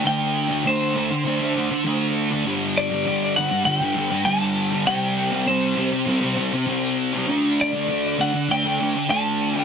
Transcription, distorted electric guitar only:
X:1
M:4/4
L:1/16
Q:1/4=99
K:Dmix
V:1 name="Distorted electric guitar" clef=bass
[D,A,D]3 [A,D] [D,A,D]2 [D,A,D]2 [D,A,D] [A,D] [D,A,D]2 [D,A,D]3 [A,D] | [G,,D,G,]3 [D,G,] [G,,D,G,]2 [G,,D,G,]2 [G,,D,G,] [D,G,] [G,,D,G,]2 [G,,D,G,]3 [D,G,] | [C,G,C]3 [G,C] [C,G,C]2 [C,G,C]2 [C,G,C] [G,C] [C,G,C]2 [C,G,C]3 [G,C] | [D,A,D]3 [A,D] [D,A,D]2 [D,A,D]2 [D,A,D] [A,D] [D,A,D]2 [D,A,D]3 [A,D] |]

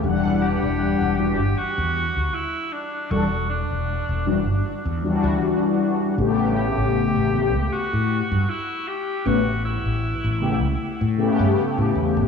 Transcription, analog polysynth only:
X:1
M:4/4
L:1/16
Q:"Swing 16ths" 1/4=78
K:Edor
V:1 name="Analog polysynth"
[E,G,Df]6 [E,G,DF] z8 z | [E,G,DA]2 z4 [E,G,DF]2 z2 [E,G,DF]6 | [C,A,B,G]6 [C,A,B,G] z8 z | [C,A,B,B]2 z4 [C,A,B,G]2 z2 [C,A,B,G]6 |]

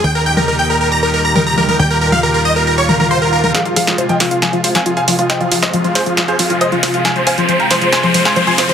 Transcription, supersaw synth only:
X:1
M:4/4
L:1/16
Q:1/4=137
K:Fm
V:1 name="Supersaw synth"
g B g B B g B B b B B b B b B B | g B B f B B e B B d B B c B B B | [Af] F [Af] F F [eg] F F [fa] F F [fa] F [fa] F F | [eg] F F [ce] F F [Ac] F F [Ac] F F [ce] F F F |
[fa] c [fa] c c [gb] c c [ac'] c c [ac'] c [ac'] c c |]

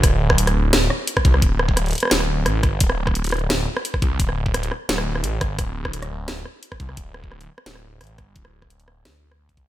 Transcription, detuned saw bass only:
X:1
M:4/4
L:1/8
Q:1/4=173
K:Cmix
V:1 name="Detuned saw bass" clef=bass
D,,,3 D,,,2 z2 C,, | D,,,3 z D,,,2 A,,, G,,, | D,,,3 D,,,2 z2 C,, | D,,,3 z D,,,2 A,,, G,,, |
D,,,3 D,,,2 z2 C,, | D,,,3 z D,,,2 A,,, G,,, | D,,,3 D,,, D,,3 C,, |]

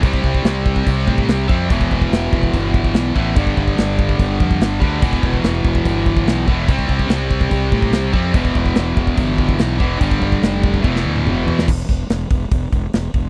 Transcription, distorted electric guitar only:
X:1
M:4/4
L:1/8
Q:1/4=144
K:Ephr
V:1 name="Distorted electric guitar" clef=bass
[C,G,C]6- [C,G,C] [C,G,C] | [E,,B,,E,]6- [E,,B,,E,] [E,,B,,E,] | [G,,D,G,]6- [G,,D,G,] [G,,D,G,] | [E,,B,,E,]6- [E,,B,,E,] [E,,B,,E,] |
[C,G,C]6- [C,G,C] [C,G,C] | [E,,B,,E,]6- [E,,B,,E,] [E,,B,,E,] | [G,,D,G,]4 [E,,B,,E,]4 | z8 |]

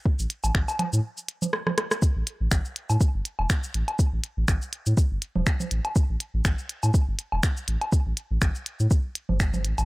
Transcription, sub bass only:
X:1
M:4/4
L:1/16
Q:"Swing 16ths" 1/4=122
K:C
V:1 name="Sub bass" clef=bass
z A,,, z A,,, A,,, z2 A,, z8 | z A,,, z A,,, A,,, z2 A,, z G,,, z E,,, z2 A,,, z | z A,,, z A,,, A,,, z2 A,, z G,,, z E,,, z2 A,,, z | z A,,, z A,,, A,,, z2 A,, z G,,, z E,,, z2 A,,, z |
z A,,, z A,,, A,,, z2 A,, z3 G,,,3 A,,, A,,, |]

